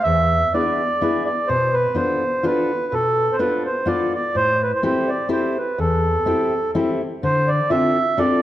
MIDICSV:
0, 0, Header, 1, 3, 480
1, 0, Start_track
1, 0, Key_signature, 0, "minor"
1, 0, Tempo, 478469
1, 37, Time_signature, 3, 2, 24, 8
1, 8447, End_track
2, 0, Start_track
2, 0, Title_t, "Accordion"
2, 0, Program_c, 0, 21
2, 27, Note_on_c, 0, 76, 122
2, 531, Note_off_c, 0, 76, 0
2, 542, Note_on_c, 0, 74, 87
2, 1241, Note_off_c, 0, 74, 0
2, 1263, Note_on_c, 0, 74, 73
2, 1480, Note_on_c, 0, 72, 92
2, 1495, Note_off_c, 0, 74, 0
2, 1743, Note_on_c, 0, 71, 89
2, 1759, Note_off_c, 0, 72, 0
2, 1960, Note_on_c, 0, 72, 80
2, 1976, Note_off_c, 0, 71, 0
2, 2461, Note_off_c, 0, 72, 0
2, 2468, Note_on_c, 0, 71, 81
2, 2942, Note_on_c, 0, 69, 99
2, 2955, Note_off_c, 0, 71, 0
2, 3336, Note_on_c, 0, 72, 66
2, 3374, Note_off_c, 0, 69, 0
2, 3397, Note_on_c, 0, 71, 80
2, 3401, Note_off_c, 0, 72, 0
2, 3645, Note_off_c, 0, 71, 0
2, 3667, Note_on_c, 0, 72, 76
2, 3882, Note_on_c, 0, 74, 88
2, 3892, Note_off_c, 0, 72, 0
2, 4143, Note_off_c, 0, 74, 0
2, 4158, Note_on_c, 0, 74, 88
2, 4375, Note_on_c, 0, 72, 112
2, 4376, Note_off_c, 0, 74, 0
2, 4638, Note_off_c, 0, 72, 0
2, 4643, Note_on_c, 0, 71, 86
2, 4736, Note_off_c, 0, 71, 0
2, 4763, Note_on_c, 0, 72, 84
2, 4845, Note_off_c, 0, 72, 0
2, 4860, Note_on_c, 0, 72, 81
2, 5100, Note_on_c, 0, 74, 84
2, 5120, Note_off_c, 0, 72, 0
2, 5304, Note_off_c, 0, 74, 0
2, 5337, Note_on_c, 0, 72, 75
2, 5598, Note_off_c, 0, 72, 0
2, 5599, Note_on_c, 0, 71, 67
2, 5814, Note_off_c, 0, 71, 0
2, 5820, Note_on_c, 0, 69, 85
2, 6730, Note_off_c, 0, 69, 0
2, 7262, Note_on_c, 0, 72, 93
2, 7503, Note_on_c, 0, 74, 86
2, 7521, Note_off_c, 0, 72, 0
2, 7728, Note_off_c, 0, 74, 0
2, 7728, Note_on_c, 0, 76, 106
2, 8212, Note_on_c, 0, 74, 91
2, 8218, Note_off_c, 0, 76, 0
2, 8447, Note_off_c, 0, 74, 0
2, 8447, End_track
3, 0, Start_track
3, 0, Title_t, "Steel-string acoustic guitar"
3, 0, Program_c, 1, 25
3, 50, Note_on_c, 1, 40, 67
3, 412, Note_off_c, 1, 40, 0
3, 537, Note_on_c, 1, 62, 52
3, 539, Note_on_c, 1, 64, 47
3, 542, Note_on_c, 1, 59, 56
3, 546, Note_on_c, 1, 68, 56
3, 794, Note_off_c, 1, 64, 0
3, 795, Note_off_c, 1, 62, 0
3, 797, Note_off_c, 1, 59, 0
3, 797, Note_off_c, 1, 68, 0
3, 1015, Note_on_c, 1, 62, 58
3, 1020, Note_on_c, 1, 59, 62
3, 1022, Note_on_c, 1, 64, 57
3, 1025, Note_on_c, 1, 68, 68
3, 1275, Note_off_c, 1, 62, 0
3, 1278, Note_off_c, 1, 59, 0
3, 1278, Note_off_c, 1, 64, 0
3, 1280, Note_off_c, 1, 68, 0
3, 1500, Note_on_c, 1, 47, 72
3, 1866, Note_off_c, 1, 47, 0
3, 1954, Note_on_c, 1, 59, 52
3, 1957, Note_on_c, 1, 65, 52
3, 1965, Note_on_c, 1, 62, 56
3, 1966, Note_on_c, 1, 69, 55
3, 2226, Note_off_c, 1, 59, 0
3, 2228, Note_off_c, 1, 65, 0
3, 2231, Note_off_c, 1, 69, 0
3, 2233, Note_off_c, 1, 62, 0
3, 2440, Note_on_c, 1, 65, 54
3, 2446, Note_on_c, 1, 59, 64
3, 2450, Note_on_c, 1, 69, 74
3, 2453, Note_on_c, 1, 62, 59
3, 2708, Note_off_c, 1, 65, 0
3, 2712, Note_off_c, 1, 59, 0
3, 2712, Note_off_c, 1, 69, 0
3, 2715, Note_off_c, 1, 62, 0
3, 2931, Note_on_c, 1, 47, 63
3, 3296, Note_off_c, 1, 47, 0
3, 3403, Note_on_c, 1, 59, 56
3, 3407, Note_on_c, 1, 62, 59
3, 3411, Note_on_c, 1, 69, 66
3, 3415, Note_on_c, 1, 65, 53
3, 3668, Note_off_c, 1, 62, 0
3, 3669, Note_off_c, 1, 59, 0
3, 3670, Note_off_c, 1, 65, 0
3, 3671, Note_off_c, 1, 69, 0
3, 3869, Note_on_c, 1, 59, 65
3, 3879, Note_on_c, 1, 65, 61
3, 3880, Note_on_c, 1, 62, 52
3, 3881, Note_on_c, 1, 69, 70
3, 4138, Note_off_c, 1, 59, 0
3, 4142, Note_off_c, 1, 65, 0
3, 4144, Note_off_c, 1, 62, 0
3, 4145, Note_off_c, 1, 69, 0
3, 4365, Note_on_c, 1, 45, 64
3, 4728, Note_off_c, 1, 45, 0
3, 4846, Note_on_c, 1, 67, 61
3, 4847, Note_on_c, 1, 60, 68
3, 4851, Note_on_c, 1, 64, 65
3, 4851, Note_on_c, 1, 69, 64
3, 5105, Note_off_c, 1, 67, 0
3, 5106, Note_off_c, 1, 60, 0
3, 5107, Note_off_c, 1, 69, 0
3, 5108, Note_off_c, 1, 64, 0
3, 5305, Note_on_c, 1, 60, 63
3, 5308, Note_on_c, 1, 69, 72
3, 5310, Note_on_c, 1, 67, 67
3, 5312, Note_on_c, 1, 64, 59
3, 5574, Note_off_c, 1, 60, 0
3, 5575, Note_off_c, 1, 69, 0
3, 5576, Note_off_c, 1, 67, 0
3, 5578, Note_off_c, 1, 64, 0
3, 5804, Note_on_c, 1, 40, 66
3, 6166, Note_off_c, 1, 40, 0
3, 6279, Note_on_c, 1, 60, 57
3, 6279, Note_on_c, 1, 64, 47
3, 6288, Note_on_c, 1, 67, 61
3, 6290, Note_on_c, 1, 69, 69
3, 6540, Note_off_c, 1, 64, 0
3, 6542, Note_off_c, 1, 60, 0
3, 6544, Note_off_c, 1, 69, 0
3, 6545, Note_off_c, 1, 67, 0
3, 6767, Note_on_c, 1, 64, 67
3, 6768, Note_on_c, 1, 60, 69
3, 6769, Note_on_c, 1, 67, 60
3, 6774, Note_on_c, 1, 69, 82
3, 7027, Note_off_c, 1, 64, 0
3, 7029, Note_off_c, 1, 60, 0
3, 7029, Note_off_c, 1, 67, 0
3, 7030, Note_off_c, 1, 69, 0
3, 7254, Note_on_c, 1, 50, 72
3, 7614, Note_off_c, 1, 50, 0
3, 7725, Note_on_c, 1, 65, 59
3, 7728, Note_on_c, 1, 69, 59
3, 7733, Note_on_c, 1, 60, 63
3, 7735, Note_on_c, 1, 62, 55
3, 7986, Note_off_c, 1, 65, 0
3, 7986, Note_off_c, 1, 69, 0
3, 7989, Note_off_c, 1, 60, 0
3, 7990, Note_off_c, 1, 62, 0
3, 8200, Note_on_c, 1, 60, 63
3, 8205, Note_on_c, 1, 62, 62
3, 8208, Note_on_c, 1, 69, 80
3, 8209, Note_on_c, 1, 65, 53
3, 8447, Note_off_c, 1, 60, 0
3, 8447, Note_off_c, 1, 62, 0
3, 8447, Note_off_c, 1, 65, 0
3, 8447, Note_off_c, 1, 69, 0
3, 8447, End_track
0, 0, End_of_file